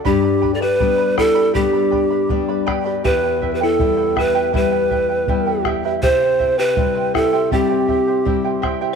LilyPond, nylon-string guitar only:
\new Staff \with { instrumentName = "Nylon-string guitar" } { \time 4/4 \key e \minor \tempo 4 = 80 g,4 <g b d'>4 <g b d'>4 <g b d'>4 | e,4 <g b e'>4 <g b e'>4 <g b e'>4 | c4 <g c' e'>4 <g c' e'>4 <g c' e'>4 | }